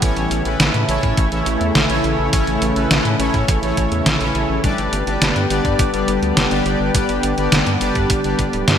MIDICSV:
0, 0, Header, 1, 5, 480
1, 0, Start_track
1, 0, Tempo, 576923
1, 19, Time_signature, 4, 2, 24, 8
1, 7307, End_track
2, 0, Start_track
2, 0, Title_t, "Analog polysynth"
2, 0, Program_c, 0, 90
2, 19, Note_on_c, 0, 45, 89
2, 19, Note_on_c, 0, 61, 77
2, 19, Note_on_c, 0, 64, 80
2, 19, Note_on_c, 0, 69, 77
2, 19, Note_on_c, 0, 73, 94
2, 350, Note_off_c, 0, 45, 0
2, 350, Note_off_c, 0, 61, 0
2, 350, Note_off_c, 0, 64, 0
2, 350, Note_off_c, 0, 69, 0
2, 350, Note_off_c, 0, 73, 0
2, 379, Note_on_c, 0, 45, 72
2, 379, Note_on_c, 0, 64, 69
2, 379, Note_on_c, 0, 69, 71
2, 379, Note_on_c, 0, 71, 83
2, 380, Note_on_c, 0, 61, 68
2, 710, Note_off_c, 0, 45, 0
2, 710, Note_off_c, 0, 61, 0
2, 710, Note_off_c, 0, 64, 0
2, 710, Note_off_c, 0, 69, 0
2, 710, Note_off_c, 0, 71, 0
2, 739, Note_on_c, 0, 45, 91
2, 739, Note_on_c, 0, 61, 83
2, 739, Note_on_c, 0, 64, 82
2, 739, Note_on_c, 0, 69, 84
2, 739, Note_on_c, 0, 73, 103
2, 1070, Note_off_c, 0, 45, 0
2, 1070, Note_off_c, 0, 61, 0
2, 1070, Note_off_c, 0, 64, 0
2, 1070, Note_off_c, 0, 69, 0
2, 1070, Note_off_c, 0, 73, 0
2, 1099, Note_on_c, 0, 45, 78
2, 1099, Note_on_c, 0, 61, 64
2, 1099, Note_on_c, 0, 64, 70
2, 1100, Note_on_c, 0, 69, 67
2, 1100, Note_on_c, 0, 73, 81
2, 1550, Note_off_c, 0, 45, 0
2, 1550, Note_off_c, 0, 61, 0
2, 1550, Note_off_c, 0, 64, 0
2, 1551, Note_off_c, 0, 69, 0
2, 1551, Note_off_c, 0, 73, 0
2, 1579, Note_on_c, 0, 61, 82
2, 1580, Note_on_c, 0, 45, 93
2, 1580, Note_on_c, 0, 64, 87
2, 1580, Note_on_c, 0, 69, 87
2, 1580, Note_on_c, 0, 73, 104
2, 1910, Note_off_c, 0, 61, 0
2, 1910, Note_off_c, 0, 64, 0
2, 1911, Note_off_c, 0, 45, 0
2, 1911, Note_off_c, 0, 69, 0
2, 1911, Note_off_c, 0, 73, 0
2, 1938, Note_on_c, 0, 45, 90
2, 1938, Note_on_c, 0, 61, 82
2, 1938, Note_on_c, 0, 64, 83
2, 1938, Note_on_c, 0, 69, 82
2, 1938, Note_on_c, 0, 73, 99
2, 2270, Note_off_c, 0, 45, 0
2, 2270, Note_off_c, 0, 61, 0
2, 2270, Note_off_c, 0, 64, 0
2, 2270, Note_off_c, 0, 69, 0
2, 2270, Note_off_c, 0, 73, 0
2, 2299, Note_on_c, 0, 45, 74
2, 2299, Note_on_c, 0, 61, 65
2, 2299, Note_on_c, 0, 64, 71
2, 2299, Note_on_c, 0, 69, 69
2, 2299, Note_on_c, 0, 71, 78
2, 2630, Note_off_c, 0, 45, 0
2, 2630, Note_off_c, 0, 61, 0
2, 2630, Note_off_c, 0, 64, 0
2, 2630, Note_off_c, 0, 69, 0
2, 2630, Note_off_c, 0, 71, 0
2, 2658, Note_on_c, 0, 45, 85
2, 2658, Note_on_c, 0, 61, 84
2, 2658, Note_on_c, 0, 64, 80
2, 2658, Note_on_c, 0, 69, 85
2, 2659, Note_on_c, 0, 73, 100
2, 2990, Note_off_c, 0, 45, 0
2, 2990, Note_off_c, 0, 61, 0
2, 2990, Note_off_c, 0, 64, 0
2, 2990, Note_off_c, 0, 69, 0
2, 2990, Note_off_c, 0, 73, 0
2, 3019, Note_on_c, 0, 45, 73
2, 3019, Note_on_c, 0, 61, 70
2, 3019, Note_on_c, 0, 64, 64
2, 3019, Note_on_c, 0, 69, 70
2, 3019, Note_on_c, 0, 73, 85
2, 3470, Note_off_c, 0, 45, 0
2, 3470, Note_off_c, 0, 61, 0
2, 3470, Note_off_c, 0, 64, 0
2, 3470, Note_off_c, 0, 69, 0
2, 3470, Note_off_c, 0, 73, 0
2, 3498, Note_on_c, 0, 45, 91
2, 3498, Note_on_c, 0, 64, 81
2, 3498, Note_on_c, 0, 69, 85
2, 3498, Note_on_c, 0, 73, 97
2, 3499, Note_on_c, 0, 61, 89
2, 3830, Note_off_c, 0, 45, 0
2, 3830, Note_off_c, 0, 61, 0
2, 3830, Note_off_c, 0, 64, 0
2, 3830, Note_off_c, 0, 69, 0
2, 3830, Note_off_c, 0, 73, 0
2, 3859, Note_on_c, 0, 55, 88
2, 3859, Note_on_c, 0, 62, 85
2, 3859, Note_on_c, 0, 67, 83
2, 3859, Note_on_c, 0, 71, 78
2, 3859, Note_on_c, 0, 74, 96
2, 4190, Note_off_c, 0, 55, 0
2, 4190, Note_off_c, 0, 62, 0
2, 4190, Note_off_c, 0, 67, 0
2, 4190, Note_off_c, 0, 71, 0
2, 4190, Note_off_c, 0, 74, 0
2, 4219, Note_on_c, 0, 71, 69
2, 4219, Note_on_c, 0, 74, 84
2, 4220, Note_on_c, 0, 55, 70
2, 4220, Note_on_c, 0, 62, 69
2, 4220, Note_on_c, 0, 67, 65
2, 4550, Note_off_c, 0, 55, 0
2, 4550, Note_off_c, 0, 71, 0
2, 4550, Note_off_c, 0, 74, 0
2, 4551, Note_off_c, 0, 62, 0
2, 4551, Note_off_c, 0, 67, 0
2, 4580, Note_on_c, 0, 55, 89
2, 4580, Note_on_c, 0, 62, 87
2, 4580, Note_on_c, 0, 67, 81
2, 4580, Note_on_c, 0, 71, 78
2, 4580, Note_on_c, 0, 74, 106
2, 4911, Note_off_c, 0, 55, 0
2, 4911, Note_off_c, 0, 62, 0
2, 4911, Note_off_c, 0, 67, 0
2, 4911, Note_off_c, 0, 71, 0
2, 4911, Note_off_c, 0, 74, 0
2, 4939, Note_on_c, 0, 55, 77
2, 4939, Note_on_c, 0, 62, 69
2, 4939, Note_on_c, 0, 67, 67
2, 4939, Note_on_c, 0, 71, 68
2, 4939, Note_on_c, 0, 74, 84
2, 5390, Note_off_c, 0, 55, 0
2, 5390, Note_off_c, 0, 62, 0
2, 5390, Note_off_c, 0, 67, 0
2, 5390, Note_off_c, 0, 71, 0
2, 5390, Note_off_c, 0, 74, 0
2, 5419, Note_on_c, 0, 55, 90
2, 5419, Note_on_c, 0, 62, 83
2, 5419, Note_on_c, 0, 71, 86
2, 5419, Note_on_c, 0, 74, 106
2, 5420, Note_on_c, 0, 67, 83
2, 5750, Note_off_c, 0, 55, 0
2, 5750, Note_off_c, 0, 62, 0
2, 5750, Note_off_c, 0, 67, 0
2, 5750, Note_off_c, 0, 71, 0
2, 5750, Note_off_c, 0, 74, 0
2, 5780, Note_on_c, 0, 55, 89
2, 5780, Note_on_c, 0, 62, 78
2, 5780, Note_on_c, 0, 67, 78
2, 5780, Note_on_c, 0, 71, 81
2, 5780, Note_on_c, 0, 74, 93
2, 6111, Note_off_c, 0, 55, 0
2, 6111, Note_off_c, 0, 62, 0
2, 6111, Note_off_c, 0, 67, 0
2, 6111, Note_off_c, 0, 71, 0
2, 6111, Note_off_c, 0, 74, 0
2, 6139, Note_on_c, 0, 55, 73
2, 6139, Note_on_c, 0, 62, 68
2, 6139, Note_on_c, 0, 67, 65
2, 6139, Note_on_c, 0, 71, 70
2, 6140, Note_on_c, 0, 74, 85
2, 6470, Note_off_c, 0, 55, 0
2, 6470, Note_off_c, 0, 62, 0
2, 6470, Note_off_c, 0, 67, 0
2, 6470, Note_off_c, 0, 71, 0
2, 6471, Note_off_c, 0, 74, 0
2, 6499, Note_on_c, 0, 55, 88
2, 6499, Note_on_c, 0, 71, 80
2, 6500, Note_on_c, 0, 62, 85
2, 6500, Note_on_c, 0, 67, 88
2, 6500, Note_on_c, 0, 74, 100
2, 6830, Note_off_c, 0, 55, 0
2, 6830, Note_off_c, 0, 62, 0
2, 6830, Note_off_c, 0, 67, 0
2, 6830, Note_off_c, 0, 71, 0
2, 6830, Note_off_c, 0, 74, 0
2, 6860, Note_on_c, 0, 55, 77
2, 6860, Note_on_c, 0, 62, 70
2, 6860, Note_on_c, 0, 67, 71
2, 6860, Note_on_c, 0, 71, 68
2, 6860, Note_on_c, 0, 74, 82
2, 7195, Note_off_c, 0, 74, 0
2, 7196, Note_off_c, 0, 55, 0
2, 7196, Note_off_c, 0, 62, 0
2, 7196, Note_off_c, 0, 67, 0
2, 7196, Note_off_c, 0, 71, 0
2, 7219, Note_on_c, 0, 67, 69
2, 7220, Note_on_c, 0, 55, 81
2, 7220, Note_on_c, 0, 62, 71
2, 7220, Note_on_c, 0, 71, 68
2, 7220, Note_on_c, 0, 76, 80
2, 7307, Note_off_c, 0, 55, 0
2, 7307, Note_off_c, 0, 62, 0
2, 7307, Note_off_c, 0, 67, 0
2, 7307, Note_off_c, 0, 71, 0
2, 7307, Note_off_c, 0, 76, 0
2, 7307, End_track
3, 0, Start_track
3, 0, Title_t, "Analog synth pad"
3, 0, Program_c, 1, 89
3, 0, Note_on_c, 1, 52, 75
3, 18, Note_on_c, 1, 49, 77
3, 19, Note_on_c, 1, 57, 69
3, 19, Note_on_c, 1, 64, 85
3, 3825, Note_off_c, 1, 49, 0
3, 3825, Note_off_c, 1, 52, 0
3, 3826, Note_off_c, 1, 57, 0
3, 3826, Note_off_c, 1, 64, 0
3, 3860, Note_on_c, 1, 50, 80
3, 3860, Note_on_c, 1, 55, 69
3, 3860, Note_on_c, 1, 59, 67
3, 3860, Note_on_c, 1, 67, 82
3, 7307, Note_off_c, 1, 50, 0
3, 7307, Note_off_c, 1, 55, 0
3, 7307, Note_off_c, 1, 59, 0
3, 7307, Note_off_c, 1, 67, 0
3, 7307, End_track
4, 0, Start_track
4, 0, Title_t, "Analog synth bass"
4, 0, Program_c, 2, 38
4, 19, Note_on_c, 2, 33, 94
4, 105, Note_off_c, 2, 33, 0
4, 137, Note_on_c, 2, 33, 75
4, 224, Note_off_c, 2, 33, 0
4, 257, Note_on_c, 2, 33, 97
4, 344, Note_off_c, 2, 33, 0
4, 378, Note_on_c, 2, 33, 79
4, 464, Note_off_c, 2, 33, 0
4, 498, Note_on_c, 2, 33, 99
4, 584, Note_off_c, 2, 33, 0
4, 618, Note_on_c, 2, 45, 79
4, 704, Note_off_c, 2, 45, 0
4, 738, Note_on_c, 2, 33, 93
4, 824, Note_off_c, 2, 33, 0
4, 859, Note_on_c, 2, 45, 76
4, 945, Note_off_c, 2, 45, 0
4, 979, Note_on_c, 2, 33, 96
4, 1065, Note_off_c, 2, 33, 0
4, 1098, Note_on_c, 2, 33, 79
4, 1184, Note_off_c, 2, 33, 0
4, 1218, Note_on_c, 2, 33, 100
4, 1304, Note_off_c, 2, 33, 0
4, 1338, Note_on_c, 2, 40, 73
4, 1424, Note_off_c, 2, 40, 0
4, 1459, Note_on_c, 2, 33, 96
4, 1545, Note_off_c, 2, 33, 0
4, 1579, Note_on_c, 2, 33, 71
4, 1665, Note_off_c, 2, 33, 0
4, 1699, Note_on_c, 2, 33, 94
4, 1785, Note_off_c, 2, 33, 0
4, 1819, Note_on_c, 2, 33, 76
4, 1905, Note_off_c, 2, 33, 0
4, 1939, Note_on_c, 2, 33, 94
4, 2025, Note_off_c, 2, 33, 0
4, 2059, Note_on_c, 2, 33, 75
4, 2145, Note_off_c, 2, 33, 0
4, 2179, Note_on_c, 2, 33, 94
4, 2264, Note_off_c, 2, 33, 0
4, 2298, Note_on_c, 2, 33, 82
4, 2384, Note_off_c, 2, 33, 0
4, 2418, Note_on_c, 2, 33, 96
4, 2504, Note_off_c, 2, 33, 0
4, 2539, Note_on_c, 2, 45, 75
4, 2625, Note_off_c, 2, 45, 0
4, 2658, Note_on_c, 2, 33, 95
4, 2744, Note_off_c, 2, 33, 0
4, 2779, Note_on_c, 2, 45, 74
4, 2865, Note_off_c, 2, 45, 0
4, 2899, Note_on_c, 2, 33, 99
4, 2984, Note_off_c, 2, 33, 0
4, 3018, Note_on_c, 2, 33, 74
4, 3104, Note_off_c, 2, 33, 0
4, 3139, Note_on_c, 2, 33, 94
4, 3225, Note_off_c, 2, 33, 0
4, 3257, Note_on_c, 2, 40, 73
4, 3344, Note_off_c, 2, 40, 0
4, 3379, Note_on_c, 2, 33, 101
4, 3465, Note_off_c, 2, 33, 0
4, 3498, Note_on_c, 2, 33, 75
4, 3584, Note_off_c, 2, 33, 0
4, 3619, Note_on_c, 2, 33, 98
4, 3705, Note_off_c, 2, 33, 0
4, 3739, Note_on_c, 2, 33, 79
4, 3825, Note_off_c, 2, 33, 0
4, 3859, Note_on_c, 2, 31, 99
4, 3945, Note_off_c, 2, 31, 0
4, 3979, Note_on_c, 2, 31, 73
4, 4065, Note_off_c, 2, 31, 0
4, 4099, Note_on_c, 2, 31, 96
4, 4184, Note_off_c, 2, 31, 0
4, 4219, Note_on_c, 2, 31, 85
4, 4305, Note_off_c, 2, 31, 0
4, 4339, Note_on_c, 2, 31, 98
4, 4425, Note_off_c, 2, 31, 0
4, 4459, Note_on_c, 2, 43, 76
4, 4545, Note_off_c, 2, 43, 0
4, 4579, Note_on_c, 2, 31, 97
4, 4665, Note_off_c, 2, 31, 0
4, 4699, Note_on_c, 2, 43, 81
4, 4784, Note_off_c, 2, 43, 0
4, 4819, Note_on_c, 2, 31, 92
4, 4905, Note_off_c, 2, 31, 0
4, 4939, Note_on_c, 2, 31, 79
4, 5025, Note_off_c, 2, 31, 0
4, 5058, Note_on_c, 2, 31, 97
4, 5144, Note_off_c, 2, 31, 0
4, 5178, Note_on_c, 2, 38, 73
4, 5264, Note_off_c, 2, 38, 0
4, 5297, Note_on_c, 2, 31, 93
4, 5384, Note_off_c, 2, 31, 0
4, 5418, Note_on_c, 2, 31, 79
4, 5504, Note_off_c, 2, 31, 0
4, 5538, Note_on_c, 2, 31, 101
4, 5624, Note_off_c, 2, 31, 0
4, 5658, Note_on_c, 2, 31, 77
4, 5744, Note_off_c, 2, 31, 0
4, 5779, Note_on_c, 2, 31, 99
4, 5865, Note_off_c, 2, 31, 0
4, 5899, Note_on_c, 2, 31, 77
4, 5985, Note_off_c, 2, 31, 0
4, 6019, Note_on_c, 2, 31, 93
4, 6105, Note_off_c, 2, 31, 0
4, 6140, Note_on_c, 2, 31, 81
4, 6225, Note_off_c, 2, 31, 0
4, 6259, Note_on_c, 2, 31, 96
4, 6345, Note_off_c, 2, 31, 0
4, 6379, Note_on_c, 2, 43, 76
4, 6465, Note_off_c, 2, 43, 0
4, 6499, Note_on_c, 2, 31, 91
4, 6585, Note_off_c, 2, 31, 0
4, 6619, Note_on_c, 2, 43, 78
4, 6705, Note_off_c, 2, 43, 0
4, 6739, Note_on_c, 2, 31, 91
4, 6825, Note_off_c, 2, 31, 0
4, 6860, Note_on_c, 2, 31, 77
4, 6945, Note_off_c, 2, 31, 0
4, 6979, Note_on_c, 2, 31, 95
4, 7065, Note_off_c, 2, 31, 0
4, 7100, Note_on_c, 2, 26, 76
4, 7185, Note_off_c, 2, 26, 0
4, 7220, Note_on_c, 2, 43, 95
4, 7305, Note_off_c, 2, 43, 0
4, 7307, End_track
5, 0, Start_track
5, 0, Title_t, "Drums"
5, 18, Note_on_c, 9, 42, 88
5, 19, Note_on_c, 9, 36, 114
5, 101, Note_off_c, 9, 42, 0
5, 102, Note_off_c, 9, 36, 0
5, 138, Note_on_c, 9, 42, 35
5, 221, Note_off_c, 9, 42, 0
5, 258, Note_on_c, 9, 42, 63
5, 341, Note_off_c, 9, 42, 0
5, 378, Note_on_c, 9, 42, 38
5, 461, Note_off_c, 9, 42, 0
5, 498, Note_on_c, 9, 38, 112
5, 498, Note_on_c, 9, 42, 84
5, 581, Note_off_c, 9, 38, 0
5, 581, Note_off_c, 9, 42, 0
5, 618, Note_on_c, 9, 42, 35
5, 701, Note_off_c, 9, 42, 0
5, 738, Note_on_c, 9, 42, 61
5, 821, Note_off_c, 9, 42, 0
5, 858, Note_on_c, 9, 42, 36
5, 859, Note_on_c, 9, 36, 96
5, 941, Note_off_c, 9, 42, 0
5, 942, Note_off_c, 9, 36, 0
5, 977, Note_on_c, 9, 42, 90
5, 979, Note_on_c, 9, 36, 115
5, 1060, Note_off_c, 9, 42, 0
5, 1062, Note_off_c, 9, 36, 0
5, 1098, Note_on_c, 9, 42, 36
5, 1181, Note_off_c, 9, 42, 0
5, 1217, Note_on_c, 9, 42, 59
5, 1300, Note_off_c, 9, 42, 0
5, 1338, Note_on_c, 9, 42, 34
5, 1421, Note_off_c, 9, 42, 0
5, 1458, Note_on_c, 9, 38, 119
5, 1458, Note_on_c, 9, 42, 87
5, 1541, Note_off_c, 9, 38, 0
5, 1541, Note_off_c, 9, 42, 0
5, 1578, Note_on_c, 9, 42, 39
5, 1662, Note_off_c, 9, 42, 0
5, 1698, Note_on_c, 9, 42, 36
5, 1781, Note_off_c, 9, 42, 0
5, 1938, Note_on_c, 9, 42, 90
5, 1939, Note_on_c, 9, 36, 101
5, 2021, Note_off_c, 9, 42, 0
5, 2022, Note_off_c, 9, 36, 0
5, 2058, Note_on_c, 9, 42, 35
5, 2141, Note_off_c, 9, 42, 0
5, 2178, Note_on_c, 9, 42, 61
5, 2261, Note_off_c, 9, 42, 0
5, 2299, Note_on_c, 9, 42, 38
5, 2382, Note_off_c, 9, 42, 0
5, 2419, Note_on_c, 9, 38, 114
5, 2419, Note_on_c, 9, 42, 81
5, 2503, Note_off_c, 9, 38, 0
5, 2503, Note_off_c, 9, 42, 0
5, 2540, Note_on_c, 9, 42, 36
5, 2623, Note_off_c, 9, 42, 0
5, 2659, Note_on_c, 9, 42, 60
5, 2743, Note_off_c, 9, 42, 0
5, 2779, Note_on_c, 9, 36, 89
5, 2779, Note_on_c, 9, 42, 35
5, 2862, Note_off_c, 9, 36, 0
5, 2862, Note_off_c, 9, 42, 0
5, 2899, Note_on_c, 9, 36, 113
5, 2899, Note_on_c, 9, 42, 88
5, 2982, Note_off_c, 9, 36, 0
5, 2982, Note_off_c, 9, 42, 0
5, 3019, Note_on_c, 9, 42, 37
5, 3103, Note_off_c, 9, 42, 0
5, 3139, Note_on_c, 9, 36, 59
5, 3139, Note_on_c, 9, 42, 59
5, 3223, Note_off_c, 9, 36, 0
5, 3223, Note_off_c, 9, 42, 0
5, 3259, Note_on_c, 9, 42, 34
5, 3342, Note_off_c, 9, 42, 0
5, 3379, Note_on_c, 9, 38, 107
5, 3379, Note_on_c, 9, 42, 85
5, 3462, Note_off_c, 9, 38, 0
5, 3462, Note_off_c, 9, 42, 0
5, 3500, Note_on_c, 9, 42, 37
5, 3583, Note_off_c, 9, 42, 0
5, 3619, Note_on_c, 9, 42, 39
5, 3702, Note_off_c, 9, 42, 0
5, 3859, Note_on_c, 9, 36, 105
5, 3859, Note_on_c, 9, 42, 88
5, 3942, Note_off_c, 9, 36, 0
5, 3942, Note_off_c, 9, 42, 0
5, 3980, Note_on_c, 9, 42, 35
5, 4063, Note_off_c, 9, 42, 0
5, 4100, Note_on_c, 9, 42, 62
5, 4183, Note_off_c, 9, 42, 0
5, 4220, Note_on_c, 9, 42, 37
5, 4303, Note_off_c, 9, 42, 0
5, 4340, Note_on_c, 9, 38, 102
5, 4340, Note_on_c, 9, 42, 87
5, 4423, Note_off_c, 9, 38, 0
5, 4423, Note_off_c, 9, 42, 0
5, 4459, Note_on_c, 9, 42, 36
5, 4543, Note_off_c, 9, 42, 0
5, 4580, Note_on_c, 9, 42, 65
5, 4663, Note_off_c, 9, 42, 0
5, 4699, Note_on_c, 9, 36, 93
5, 4699, Note_on_c, 9, 42, 36
5, 4782, Note_off_c, 9, 36, 0
5, 4782, Note_off_c, 9, 42, 0
5, 4819, Note_on_c, 9, 36, 115
5, 4819, Note_on_c, 9, 42, 83
5, 4902, Note_off_c, 9, 36, 0
5, 4902, Note_off_c, 9, 42, 0
5, 4939, Note_on_c, 9, 42, 37
5, 5023, Note_off_c, 9, 42, 0
5, 5059, Note_on_c, 9, 42, 58
5, 5142, Note_off_c, 9, 42, 0
5, 5180, Note_on_c, 9, 42, 36
5, 5263, Note_off_c, 9, 42, 0
5, 5299, Note_on_c, 9, 38, 108
5, 5299, Note_on_c, 9, 42, 84
5, 5383, Note_off_c, 9, 38, 0
5, 5383, Note_off_c, 9, 42, 0
5, 5419, Note_on_c, 9, 42, 40
5, 5502, Note_off_c, 9, 42, 0
5, 5539, Note_on_c, 9, 42, 39
5, 5622, Note_off_c, 9, 42, 0
5, 5779, Note_on_c, 9, 36, 108
5, 5779, Note_on_c, 9, 42, 94
5, 5862, Note_off_c, 9, 36, 0
5, 5862, Note_off_c, 9, 42, 0
5, 5899, Note_on_c, 9, 42, 37
5, 5982, Note_off_c, 9, 42, 0
5, 6018, Note_on_c, 9, 42, 66
5, 6101, Note_off_c, 9, 42, 0
5, 6138, Note_on_c, 9, 42, 39
5, 6221, Note_off_c, 9, 42, 0
5, 6258, Note_on_c, 9, 38, 116
5, 6258, Note_on_c, 9, 42, 95
5, 6341, Note_off_c, 9, 38, 0
5, 6341, Note_off_c, 9, 42, 0
5, 6378, Note_on_c, 9, 42, 40
5, 6461, Note_off_c, 9, 42, 0
5, 6498, Note_on_c, 9, 42, 64
5, 6581, Note_off_c, 9, 42, 0
5, 6617, Note_on_c, 9, 42, 38
5, 6619, Note_on_c, 9, 36, 96
5, 6701, Note_off_c, 9, 42, 0
5, 6702, Note_off_c, 9, 36, 0
5, 6738, Note_on_c, 9, 42, 88
5, 6739, Note_on_c, 9, 36, 109
5, 6821, Note_off_c, 9, 42, 0
5, 6823, Note_off_c, 9, 36, 0
5, 6858, Note_on_c, 9, 42, 38
5, 6942, Note_off_c, 9, 42, 0
5, 6978, Note_on_c, 9, 42, 64
5, 6980, Note_on_c, 9, 36, 58
5, 7061, Note_off_c, 9, 42, 0
5, 7063, Note_off_c, 9, 36, 0
5, 7099, Note_on_c, 9, 42, 37
5, 7182, Note_off_c, 9, 42, 0
5, 7219, Note_on_c, 9, 38, 109
5, 7219, Note_on_c, 9, 42, 93
5, 7302, Note_off_c, 9, 38, 0
5, 7302, Note_off_c, 9, 42, 0
5, 7307, End_track
0, 0, End_of_file